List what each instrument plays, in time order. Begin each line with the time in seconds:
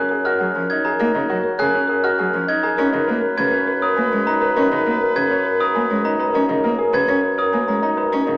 Already playing: bassoon F#2, grand piano C#4
0.09 grand piano G#4, marimba A#4
0.24 grand piano F#4, marimba D#5, glockenspiel F6
0.39 cello F#3, grand piano G#4, marimba F#5
0.55 cello F3, grand piano C#4
0.69 grand piano D#4, marimba D#5, glockenspiel G#6
0.84 grand piano G#4, marimba A#4, glockenspiel A#5
0.99 cello A#3, grand piano D#4, marimba A#4
1.15 cello C#3, grand piano D#4
1.29 cello F#3, grand piano F#4, marimba C#5
1.44 marimba A#4
1.58 cello C#3, grand piano G#4, marimba C#5, glockenspiel F#6
1.74 grand piano C#4
1.88 grand piano G#4, marimba A#4
2.02 grand piano F#4, marimba D#5, glockenspiel F6
2.18 cello F#3, grand piano G#4, marimba F#5
2.33 cello F3, grand piano C#4
2.47 grand piano D#4, marimba D#5, glockenspiel G#6
2.62 grand piano G#4, marimba A#4, glockenspiel A#5
2.77 bassoon F#2, cello C#4, grand piano D#4, marimba A#4, oboe B4
2.92 cello C#3, grand piano D#4
3.07 cello A#3, grand piano A#4, marimba B4
3.21 marimba A#4
3.36 cello C#3, marimba B4, grand piano B4, glockenspiel G#6
3.52 grand piano C#4
3.67 marimba A#4, grand piano B4
3.82 grand piano A#4, marimba C#5, glockenspiel D#6
3.97 cello A#3, grand piano B4, marimba G#5
4.12 cello G#3, grand piano C#4
4.26 grand piano D#4, marimba C#5, glockenspiel A#5
4.41 marimba A#4, grand piano B4, glockenspiel A#5
4.56 cello C#4, grand piano D#4, marimba A#4
4.72 cello C#3, grand piano D#4
4.86 cello A#3, grand piano A#4, marimba B4
5.01 marimba A#4
5.16 cello C#3, grand piano B4, marimba B4, glockenspiel G#6
5.31 grand piano C#4
5.45 marimba A#4, grand piano B4
5.60 grand piano A#4, glockenspiel D#6
5.75 cello A#3, grand piano B4, marimba G#5
5.90 cello G#3, grand piano C#4
6.04 grand piano D#4, marimba C#5, glockenspiel A#5
6.19 marimba A#4, grand piano B4, glockenspiel A#5
6.34 cello C#4, grand piano D#4, marimba A#4
6.49 cello C#3, grand piano D#4
6.64 cello A#3, grand piano A#4, marimba B4
6.78 grand piano G#4, marimba A#4
6.93 cello C#3, grand piano B4, marimba B4, glockenspiel G#6
7.08 cello C#4, grand piano C#4
7.23 marimba A#4, grand piano B4
7.38 grand piano A#4, marimba C#5, glockenspiel D#6
7.52 cello A#3, grand piano B4, marimba G#5
7.67 cello G#3, grand piano C#4, glockenspiel A#5
7.82 grand piano D#4, marimba C#5, glockenspiel A#5
7.97 marimba A#4, grand piano B4, glockenspiel A#5
8.12 cello C#4, grand piano D#4, marimba A#4
8.27 cello C#3, grand piano D#4